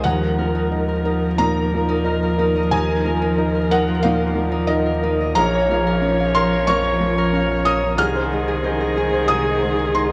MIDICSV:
0, 0, Header, 1, 7, 480
1, 0, Start_track
1, 0, Tempo, 665188
1, 35, Time_signature, 4, 2, 24, 8
1, 3875, Tempo, 653595
1, 7364, End_track
2, 0, Start_track
2, 0, Title_t, "Harp"
2, 0, Program_c, 0, 46
2, 0, Note_on_c, 0, 75, 65
2, 36, Note_on_c, 0, 63, 100
2, 277, Note_on_c, 0, 70, 69
2, 387, Note_off_c, 0, 63, 0
2, 396, Note_on_c, 0, 63, 91
2, 628, Note_off_c, 0, 70, 0
2, 637, Note_on_c, 0, 70, 72
2, 750, Note_off_c, 0, 63, 0
2, 758, Note_on_c, 0, 63, 93
2, 993, Note_off_c, 0, 63, 0
2, 1002, Note_on_c, 0, 63, 101
2, 1352, Note_off_c, 0, 63, 0
2, 1361, Note_on_c, 0, 63, 106
2, 1473, Note_off_c, 0, 70, 0
2, 1481, Note_on_c, 0, 70, 78
2, 1598, Note_off_c, 0, 70, 0
2, 1607, Note_on_c, 0, 70, 71
2, 1716, Note_off_c, 0, 63, 0
2, 1725, Note_on_c, 0, 63, 107
2, 1836, Note_off_c, 0, 75, 0
2, 1844, Note_on_c, 0, 75, 79
2, 1956, Note_off_c, 0, 63, 0
2, 1964, Note_on_c, 0, 63, 112
2, 2194, Note_off_c, 0, 70, 0
2, 2203, Note_on_c, 0, 70, 78
2, 2313, Note_off_c, 0, 63, 0
2, 2322, Note_on_c, 0, 63, 103
2, 2553, Note_off_c, 0, 70, 0
2, 2561, Note_on_c, 0, 70, 76
2, 2669, Note_off_c, 0, 63, 0
2, 2678, Note_on_c, 0, 63, 108
2, 2798, Note_on_c, 0, 65, 78
2, 2907, Note_off_c, 0, 63, 0
2, 2915, Note_on_c, 0, 63, 117
2, 3251, Note_off_c, 0, 63, 0
2, 3259, Note_on_c, 0, 63, 101
2, 3376, Note_off_c, 0, 70, 0
2, 3384, Note_on_c, 0, 70, 80
2, 3497, Note_off_c, 0, 70, 0
2, 3506, Note_on_c, 0, 70, 81
2, 3624, Note_off_c, 0, 63, 0
2, 3632, Note_on_c, 0, 63, 100
2, 3746, Note_off_c, 0, 75, 0
2, 3755, Note_on_c, 0, 75, 75
2, 3865, Note_off_c, 0, 70, 0
2, 3874, Note_on_c, 0, 70, 103
2, 3895, Note_off_c, 0, 75, 0
2, 3896, Note_off_c, 0, 63, 0
2, 3896, Note_off_c, 0, 65, 0
2, 4003, Note_on_c, 0, 73, 86
2, 4122, Note_on_c, 0, 77, 79
2, 4231, Note_off_c, 0, 70, 0
2, 4240, Note_on_c, 0, 70, 106
2, 4349, Note_off_c, 0, 73, 0
2, 4357, Note_on_c, 0, 73, 82
2, 4473, Note_off_c, 0, 77, 0
2, 4482, Note_on_c, 0, 77, 80
2, 4589, Note_off_c, 0, 70, 0
2, 4598, Note_on_c, 0, 70, 106
2, 4716, Note_off_c, 0, 73, 0
2, 4724, Note_on_c, 0, 73, 82
2, 4834, Note_off_c, 0, 70, 0
2, 4843, Note_on_c, 0, 70, 119
2, 5073, Note_off_c, 0, 73, 0
2, 5082, Note_on_c, 0, 73, 71
2, 5195, Note_off_c, 0, 70, 0
2, 5204, Note_on_c, 0, 70, 104
2, 5319, Note_off_c, 0, 77, 0
2, 5328, Note_on_c, 0, 77, 81
2, 5440, Note_off_c, 0, 77, 0
2, 5449, Note_on_c, 0, 77, 75
2, 5553, Note_off_c, 0, 70, 0
2, 5562, Note_on_c, 0, 70, 95
2, 5683, Note_on_c, 0, 82, 72
2, 5801, Note_on_c, 0, 68, 106
2, 5814, Note_off_c, 0, 73, 0
2, 5815, Note_off_c, 0, 70, 0
2, 5816, Note_off_c, 0, 82, 0
2, 5818, Note_off_c, 0, 77, 0
2, 5920, Note_on_c, 0, 72, 81
2, 6040, Note_on_c, 0, 75, 70
2, 6149, Note_off_c, 0, 68, 0
2, 6158, Note_on_c, 0, 68, 100
2, 6268, Note_off_c, 0, 72, 0
2, 6276, Note_on_c, 0, 72, 80
2, 6387, Note_off_c, 0, 75, 0
2, 6396, Note_on_c, 0, 75, 73
2, 6511, Note_off_c, 0, 68, 0
2, 6520, Note_on_c, 0, 68, 99
2, 6629, Note_off_c, 0, 72, 0
2, 6638, Note_on_c, 0, 72, 72
2, 6748, Note_off_c, 0, 68, 0
2, 6757, Note_on_c, 0, 68, 99
2, 6992, Note_off_c, 0, 72, 0
2, 7001, Note_on_c, 0, 72, 57
2, 7109, Note_off_c, 0, 68, 0
2, 7118, Note_on_c, 0, 68, 91
2, 7236, Note_off_c, 0, 75, 0
2, 7245, Note_on_c, 0, 75, 65
2, 7357, Note_off_c, 0, 75, 0
2, 7364, Note_off_c, 0, 68, 0
2, 7364, Note_off_c, 0, 72, 0
2, 7364, End_track
3, 0, Start_track
3, 0, Title_t, "Viola"
3, 0, Program_c, 1, 41
3, 30, Note_on_c, 1, 70, 79
3, 3871, Note_off_c, 1, 70, 0
3, 3877, Note_on_c, 1, 73, 93
3, 5787, Note_on_c, 1, 68, 89
3, 5798, Note_off_c, 1, 73, 0
3, 7364, Note_off_c, 1, 68, 0
3, 7364, End_track
4, 0, Start_track
4, 0, Title_t, "Felt piano"
4, 0, Program_c, 2, 0
4, 0, Control_c, 2, 64, 127
4, 26, Note_on_c, 2, 78, 108
4, 38, Note_on_c, 2, 39, 85
4, 47, Control_c, 2, 64, 0
4, 146, Control_c, 2, 64, 127
4, 280, Note_on_c, 2, 53, 62
4, 516, Note_on_c, 2, 63, 66
4, 664, Note_off_c, 2, 53, 0
4, 758, Note_on_c, 2, 70, 65
4, 904, Note_off_c, 2, 63, 0
4, 968, Note_off_c, 2, 78, 0
4, 973, Note_off_c, 2, 39, 0
4, 998, Note_on_c, 2, 82, 115
4, 999, Note_on_c, 2, 46, 67
4, 1144, Note_off_c, 2, 70, 0
4, 1244, Note_on_c, 2, 53, 65
4, 1383, Note_off_c, 2, 46, 0
4, 1475, Note_on_c, 2, 63, 70
4, 1624, Note_off_c, 2, 53, 0
4, 1720, Note_on_c, 2, 70, 67
4, 1861, Note_off_c, 2, 63, 0
4, 1930, Note_off_c, 2, 82, 0
4, 1958, Note_on_c, 2, 80, 112
4, 1961, Note_on_c, 2, 39, 84
4, 1974, Control_c, 2, 64, 0
4, 2105, Note_off_c, 2, 70, 0
4, 2110, Control_c, 2, 64, 127
4, 2200, Note_on_c, 2, 53, 62
4, 2439, Note_on_c, 2, 63, 77
4, 2581, Note_off_c, 2, 53, 0
4, 2646, Note_off_c, 2, 80, 0
4, 2677, Note_on_c, 2, 70, 71
4, 2679, Note_on_c, 2, 78, 116
4, 2817, Note_off_c, 2, 63, 0
4, 2882, Note_off_c, 2, 39, 0
4, 2895, Note_off_c, 2, 78, 0
4, 2905, Note_on_c, 2, 77, 111
4, 2916, Note_on_c, 2, 46, 75
4, 3051, Note_off_c, 2, 70, 0
4, 3142, Note_on_c, 2, 53, 71
4, 3288, Note_off_c, 2, 46, 0
4, 3349, Note_off_c, 2, 77, 0
4, 3371, Note_on_c, 2, 75, 109
4, 3381, Note_on_c, 2, 63, 75
4, 3526, Note_off_c, 2, 53, 0
4, 3628, Note_on_c, 2, 70, 72
4, 3776, Note_off_c, 2, 63, 0
4, 3840, Note_off_c, 2, 75, 0
4, 3862, Note_on_c, 2, 82, 124
4, 3874, Note_off_c, 2, 70, 0
4, 3875, Note_on_c, 2, 34, 89
4, 3888, Control_c, 2, 64, 0
4, 4008, Control_c, 2, 64, 127
4, 4111, Note_on_c, 2, 53, 64
4, 4349, Note_on_c, 2, 61, 76
4, 4498, Note_off_c, 2, 53, 0
4, 4561, Note_off_c, 2, 82, 0
4, 4592, Note_on_c, 2, 84, 117
4, 4597, Note_on_c, 2, 70, 67
4, 4736, Note_off_c, 2, 61, 0
4, 4808, Note_off_c, 2, 34, 0
4, 4817, Note_off_c, 2, 84, 0
4, 4831, Note_on_c, 2, 85, 125
4, 4833, Note_on_c, 2, 41, 77
4, 4981, Note_off_c, 2, 70, 0
4, 5074, Note_on_c, 2, 53, 69
4, 5219, Note_off_c, 2, 41, 0
4, 5312, Note_on_c, 2, 61, 71
4, 5458, Note_off_c, 2, 53, 0
4, 5522, Note_off_c, 2, 85, 0
4, 5551, Note_on_c, 2, 70, 72
4, 5551, Note_on_c, 2, 87, 114
4, 5695, Note_off_c, 2, 61, 0
4, 5774, Note_off_c, 2, 87, 0
4, 5791, Note_off_c, 2, 70, 0
4, 5791, Note_on_c, 2, 36, 87
4, 5793, Note_on_c, 2, 89, 125
4, 5806, Control_c, 2, 64, 0
4, 5919, Control_c, 2, 64, 127
4, 6038, Note_on_c, 2, 56, 59
4, 6270, Note_on_c, 2, 63, 69
4, 6415, Note_off_c, 2, 56, 0
4, 6506, Note_on_c, 2, 68, 63
4, 6651, Note_off_c, 2, 63, 0
4, 6718, Note_off_c, 2, 36, 0
4, 6719, Note_off_c, 2, 89, 0
4, 6746, Note_on_c, 2, 87, 115
4, 6748, Note_on_c, 2, 36, 72
4, 6893, Note_off_c, 2, 68, 0
4, 6996, Note_on_c, 2, 56, 64
4, 7204, Note_off_c, 2, 87, 0
4, 7236, Note_on_c, 2, 84, 98
4, 7237, Note_on_c, 2, 63, 66
4, 7364, Note_off_c, 2, 36, 0
4, 7364, Note_off_c, 2, 56, 0
4, 7364, Note_off_c, 2, 63, 0
4, 7364, Note_off_c, 2, 84, 0
4, 7364, End_track
5, 0, Start_track
5, 0, Title_t, "Ambient pad"
5, 0, Program_c, 3, 92
5, 26, Note_on_c, 3, 63, 82
5, 30, Note_on_c, 3, 53, 84
5, 30, Note_on_c, 3, 70, 82
5, 3840, Note_off_c, 3, 63, 0
5, 3859, Note_off_c, 3, 53, 0
5, 3864, Note_off_c, 3, 70, 0
5, 3865, Note_on_c, 3, 61, 84
5, 3867, Note_on_c, 3, 53, 86
5, 3873, Note_on_c, 3, 70, 86
5, 5760, Note_off_c, 3, 53, 0
5, 5785, Note_on_c, 3, 56, 80
5, 5785, Note_on_c, 3, 63, 75
5, 5788, Note_off_c, 3, 61, 0
5, 7364, Note_off_c, 3, 56, 0
5, 7364, Note_off_c, 3, 63, 0
5, 7364, Note_off_c, 3, 70, 0
5, 7364, End_track
6, 0, Start_track
6, 0, Title_t, "Cello"
6, 0, Program_c, 4, 42
6, 41, Note_on_c, 4, 53, 85
6, 3847, Note_off_c, 4, 53, 0
6, 3861, Note_on_c, 4, 53, 90
6, 5756, Note_off_c, 4, 53, 0
6, 5789, Note_on_c, 4, 51, 89
6, 7364, Note_off_c, 4, 51, 0
6, 7364, End_track
7, 0, Start_track
7, 0, Title_t, "Sub bass"
7, 0, Program_c, 5, 38
7, 31, Note_on_c, 5, 39, 81
7, 3874, Note_on_c, 5, 34, 85
7, 3885, Note_off_c, 5, 39, 0
7, 5792, Note_on_c, 5, 36, 78
7, 5803, Note_off_c, 5, 34, 0
7, 7364, Note_off_c, 5, 36, 0
7, 7364, End_track
0, 0, End_of_file